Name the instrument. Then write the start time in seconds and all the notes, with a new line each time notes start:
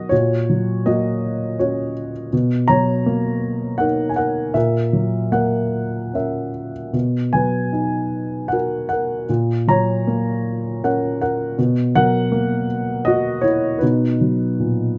grand piano
Already playing: F#3 D#4 F#4 A#4 D#5 F#5
0.09 A#2 F#4 C#5
0.49 F#3
0.86 A#3 F#4 D#5
1.59 C#4 F#4 C#5
2.33 B2
2.68 F#3 C#5 A#5
3.06 A#3
3.78 D#4 A#4 F#5
4.09 G#5
4.16 A#4 F#5
4.54 A#2 A#4 E5
4.93 F#3
5.32 A#3 A#4 F#5
6.14 C#4 A#4 E5
6.93 B2
7.33 F#3 B4 G#5
7.72 D#4
8.48 F#4 F#5
8.53 A#4
8.89 F#5
8.93 A#4
9.29 A#2
9.68 F#3 C#5 A#5
10.07 A#3
10.83 C#4 A#4 F#5
11.21 A#4 F#5
11.58 B2
11.95 F#3 A#4 F#5
12.32 A#3
13.05 F#4 D#5
13.41 E4 C#5
13.79 B2 D#4 B4
14.21 F#3
14.60 A#2